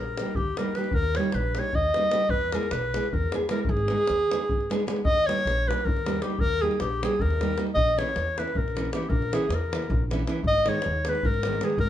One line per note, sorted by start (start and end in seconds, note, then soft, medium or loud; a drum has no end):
0.00 0.20 A#1 medium
0.00 0.37 A#4 medium
0.17 0.32 G3 soft
0.17 0.32 A#3 medium
0.17 0.33 D#4 soft
0.17 davul high medium
0.22 0.33 G4 medium
0.22 davul high soft
0.35 0.49 D#2 medium
0.35 0.59 G4 medium
0.35 davul low medium
0.57 0.70 G3 medium
0.57 0.71 A#3 medium
0.57 0.71 D#4 medium
0.57 0.77 A#4 medium
0.57 davul high medium
0.61 0.71 G4 medium
0.75 0.88 G3 medium
0.75 0.88 A#3 medium
0.75 0.89 D#4 medium
0.75 0.89 G4 medium
0.75 0.96 B4 medium
0.75 davul high medium
0.84 davul high soft
0.91 1.17 D#2 medium
0.91 1.18 A#4 loud
0.91 davul low loud
1.03 davul high soft
1.15 1.29 G3 medium
1.15 1.30 A#3 medium
1.15 1.36 C#5 loud
1.15 davul high medium
1.19 1.30 D#4 medium
1.19 1.30 G4 medium
1.24 davul high soft
1.32 1.59 A#1 medium
1.32 1.60 B4 medium
1.32 davul high medium
1.55 1.69 G3 soft
1.55 1.69 A#3 soft
1.55 1.70 D#4 soft
1.55 davul high medium
1.59 1.70 G4 medium
1.59 1.77 C#5 loud
1.64 davul high soft
1.73 1.88 D#2 medium
1.73 2.31 D#5 loud
1.73 davul low medium
1.94 2.08 G3 medium
1.94 2.08 A#3 medium
1.94 2.08 D#4 medium
1.94 2.08 G4 medium
1.94 davul high medium
2.11 2.24 G3 medium
2.11 2.24 A#3 medium
2.11 2.25 D#4 medium
2.11 2.25 G4 medium
2.11 davul high medium
2.21 davul high soft
2.29 2.54 E2 medium
2.29 2.54 B4 loud
2.29 davul low medium
2.41 davul high soft
2.52 2.66 G#3 medium
2.52 2.66 B3 medium
2.52 2.66 E4 medium
2.52 2.67 G#4 medium
2.52 2.73 A#4 medium
2.52 davul high medium
2.63 davul high soft
2.71 2.96 B1 medium
2.71 3.09 B4 loud
2.71 davul high medium
2.94 3.07 G#3 medium
2.94 3.07 B3 soft
2.94 3.08 E4 medium
2.94 3.08 G#4 medium
2.94 davul high medium
3.03 davul high soft
3.09 3.15 B4 medium
3.09 davul low medium
3.13 3.26 E2 medium
3.13 3.33 A#4 medium
3.32 3.45 G#3 medium
3.32 3.46 B3 medium
3.32 3.46 E4 soft
3.32 3.46 G#4 medium
3.32 davul high medium
3.49 3.62 G#3 medium
3.49 3.62 B3 medium
3.49 3.63 E4 medium
3.49 3.63 G#4 medium
3.49 3.61 A#4 medium
3.49 davul high medium
3.57 davul high soft
3.62 3.72 A#4 medium
3.62 davul low loud
3.69 3.93 G#1 loud
3.69 4.88 G#4 loud
3.77 davul high soft
3.88 4.03 G#3 medium
3.88 4.03 B3 medium
3.88 4.03 D#4 medium
3.88 4.03 G#4 medium
3.88 davul high medium
3.98 davul high soft
4.07 4.34 D#2 medium
4.07 davul high medium
4.19 davul high soft
4.31 4.44 G#3 medium
4.31 4.44 B3 medium
4.31 4.44 D#4 medium
4.31 4.44 G#4 medium
4.31 davul high medium
4.40 davul high soft
4.49 4.62 G#1 medium
4.49 davul low medium
4.61 davul high soft
4.70 4.82 G#3 medium
4.70 4.82 B3 medium
4.70 4.82 D#4 medium
4.70 4.83 G#4 medium
4.70 davul high medium
4.80 davul high soft
4.87 4.99 G#3 medium
4.87 4.99 B3 medium
4.87 5.00 D#4 medium
4.87 5.00 G#4 medium
4.87 davul high medium
4.96 davul high soft
5.04 5.29 D#2 medium
5.04 5.28 D#5 loud
5.04 davul low loud
5.17 davul high soft
5.26 5.39 G3 medium
5.26 5.40 A#3 medium
5.26 5.40 D#4 medium
5.26 5.40 G4 medium
5.26 5.69 C#5 loud
5.26 davul high medium
5.39 davul high soft
5.45 5.69 A#1 medium
5.45 davul high medium
5.67 5.79 G3 soft
5.67 5.80 A#3 soft
5.67 5.80 D#4 soft
5.67 5.80 G4 medium
5.67 5.86 B4 medium
5.67 davul high medium
5.78 davul high soft
5.85 6.18 D#2 medium
5.85 6.23 A#4 medium
5.85 davul low loud
5.97 davul high soft
6.06 6.18 G3 medium
6.06 6.18 A#3 medium
6.06 6.18 D#4 medium
6.06 6.19 G4 medium
6.06 davul high medium
6.14 davul high soft
6.22 6.34 G3 medium
6.22 6.35 A#3 medium
6.22 6.35 D#4 medium
6.22 6.41 G4 medium
6.22 6.35 G4 medium
6.22 davul high medium
6.30 davul high soft
6.38 6.65 D#2 medium
6.38 6.63 A#4 loud
6.38 davul low medium
6.51 davul high soft
6.62 6.74 G3 medium
6.62 6.75 A#3 medium
6.62 6.75 D#4 medium
6.62 6.75 G4 medium
6.62 6.82 G#4 medium
6.71 davul high soft
6.80 7.05 A#1 medium
6.80 7.05 G4 medium
6.80 davul high medium
7.03 7.15 G3 soft
7.03 7.15 A#3 medium
7.03 7.16 D#4 soft
7.03 7.16 G4 medium
7.03 7.23 G#4 medium
7.03 davul high medium
7.11 davul high soft
7.19 7.54 D#2 loud
7.19 7.62 A#4 loud
7.19 davul low medium
7.30 davul high soft
7.41 7.53 G3 medium
7.41 7.53 A#3 medium
7.41 7.53 D#4 medium
7.41 7.54 G4 medium
7.41 davul high medium
7.51 davul high soft
7.57 7.69 G3 medium
7.57 7.70 A#3 medium
7.57 7.70 D#4 medium
7.57 7.70 G4 medium
7.57 davul high medium
7.67 davul high soft
7.74 7.99 A#1 medium
7.74 8.00 D#5 loud
7.74 davul low loud
7.87 davul high soft
7.96 8.09 E3 medium
7.96 8.10 A#3 medium
7.96 8.10 C#4 medium
7.96 8.10 E4 medium
7.96 8.40 C#5 loud
7.96 davul high medium
8.07 davul high soft
8.16 8.40 E2 medium
8.16 davul high medium
8.37 8.50 E3 medium
8.37 8.50 A#3 soft
8.37 8.50 C#4 soft
8.37 8.50 E4 medium
8.37 8.58 B4 medium
8.37 davul high medium
8.48 davul high soft
8.55 8.88 A#1 medium
8.55 8.93 A#4 medium
8.55 davul low loud
8.68 davul high soft
8.75 8.87 E3 medium
8.75 8.87 A#3 soft
8.75 8.88 C#4 medium
8.75 8.88 E4 medium
8.75 davul high medium
8.85 davul high soft
8.92 9.04 E3 medium
8.92 9.05 A#3 medium
8.92 9.05 C#4 medium
8.92 9.05 E4 medium
8.92 9.10 G4 medium
8.92 davul high medium
9.03 davul high soft
9.09 9.34 A#1 medium
9.09 9.35 A#4 loud
9.09 davul low loud
9.22 davul high soft
9.32 9.44 E3 medium
9.32 9.45 A#3 medium
9.32 9.45 C#4 medium
9.32 9.45 E4 medium
9.32 9.56 G#4 medium
9.32 davul high medium
9.49 9.73 E2 medium
9.49 davul high medium
9.55 10.05 A#4 medium
9.72 9.84 E3 medium
9.72 9.84 A#3 soft
9.72 9.85 C#4 soft
9.72 9.85 E4 medium
9.72 davul high medium
9.82 davul high soft
9.90 10.22 A#1 loud
9.90 davul low loud
10.11 10.22 E3 medium
10.11 10.22 A#3 medium
10.11 10.23 C#4 medium
10.11 10.23 E4 medium
10.11 davul high medium
10.19 davul high soft
10.27 10.39 E3 medium
10.27 10.39 A#3 medium
10.27 10.39 C#4 medium
10.27 10.40 E4 medium
10.27 davul high medium
10.43 10.68 G#1 medium
10.43 10.70 D#5 loud
10.43 davul low loud
10.55 davul high soft
10.65 10.78 D#3 medium
10.65 10.78 G#3 medium
10.65 10.79 B3 medium
10.65 10.79 D#4 medium
10.65 11.10 C#5 loud
10.65 davul high medium
10.74 davul high soft
10.82 davul high medium
10.86 11.10 D#2 medium
11.05 11.19 D#3 soft
11.05 11.19 G#3 soft
11.05 11.20 B3 soft
11.05 11.20 D#4 medium
11.05 davul high medium
11.09 11.27 B4 loud
11.15 davul high soft
11.23 11.57 G#1 loud
11.23 11.66 A#4 loud
11.23 davul low loud
11.34 davul high soft
11.43 11.57 D#3 medium
11.43 11.57 G#3 medium
11.43 11.58 B3 medium
11.43 davul high medium
11.48 11.58 D#4 medium
11.53 davul high soft
11.61 11.73 D#3 medium
11.61 11.74 G#3 medium
11.61 11.74 B3 medium
11.61 11.74 D#4 medium
11.61 11.79 G#4 medium
11.61 davul high medium
11.70 davul high soft
11.77 11.89 G#1 loud
11.77 11.89 A#4 loud
11.77 davul low medium